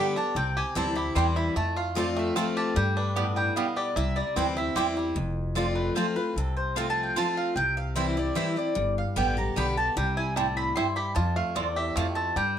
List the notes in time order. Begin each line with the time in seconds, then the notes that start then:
Already playing: D3 G3 B3 D4 G4 B5
0.00 G4
0.16 B3 D4 G4 A5
0.35 C2 C3 C4 G5
0.57 G4 G#5
0.75 D2 E3 G3 C4 E4 C5 G5 A5
0.95 C4 E4 G4 B5
1.15 E2 E3 G3 C4 E4 C5 G5 C6
1.36 E4 B5
1.56 F2 A3 A5
1.76 F4 F5
1.95 F3 A3 C4 F4 C5 D5 A5
2.17 A3 E5
2.35 F3 A3 C4 F4 C5 F5 A5
2.57 G4 A5
2.76 G2 G3 G5
2.97 D4 B4
3.16 A2 B3 G4 D5 G5
3.36 G3 G5
3.56 B2 B3 G4 D5 F5 G5
3.76 G4 D5
3.96 C2 C3 E4 E5
4.16 G3 D5
4.36 D2 E3 G3 C4 E4 B4 C5 G5
4.57 C4 E4 E5
4.75 E2 E3 G3 C4 E4 G4 C5 G5
4.97 G3 C4 E4
5.16 F1 F2
5.55 F3 A3 C4 F4 C5 D5 A5
5.75 B4
5.95 F3 A3 C4 F4 C5 A5
6.16 C4 F4 B4
6.36 C2 C3 A4
6.57 C5
6.76 F3 A3 C4 F4 C5 F5 A5
6.90 A5
7.03 G5
7.16 F3 A3 C4 F4 C5 A5
7.37 F5
7.56 C2 C3 G5
7.77 F5
7.95 E3 G3 C4 E4 C5 E5 G5
8.17 C4 E4 D5
8.35 E3 G3 C4 E4 C5 E5 G5
8.56 C4 E4 D5
8.75 G1 G2
8.98 F5
9.16 A1 D3 G3 B3 G4 D5 G5
9.37 B3 G4 A#5
9.56 B1 D3 G3 B3 G4 D5 G5 B5
9.77 G4 A5
9.96 C2 C3 G3 G5
10.17 E4 G#5
10.36 A2 G3 C4 E4 C5 G5 A5
10.57 C4 B5
10.76 G2 C4 E4 C5 G5 C6
10.96 G4 B5
11.15 F2 F4 A5
11.36 A3 F5
11.55 E2 C4 F4 C5 D5 A5
11.76 G4 E5
11.96 F2 A3 C4 F4 C5 F5 A5
12.15 C4 A5
12.36 G2 G3 G5